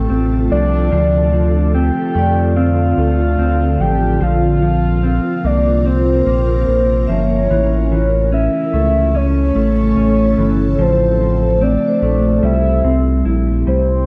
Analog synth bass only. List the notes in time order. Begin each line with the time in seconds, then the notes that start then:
0.11 A1
0.52 C2
0.93 D2
2.15 F2
2.98 D2
3.39 D2
3.80 A1
4.21 A#1
5.44 C2
6.26 A#1
6.68 A#1
7.09 G1
7.50 A1
8.74 C#2
9.56 A1
9.97 A1
10.38 G1
10.79 A1
12.02 A#1
12.43 C2
12.84 C2
13.26 A#1
13.67 C2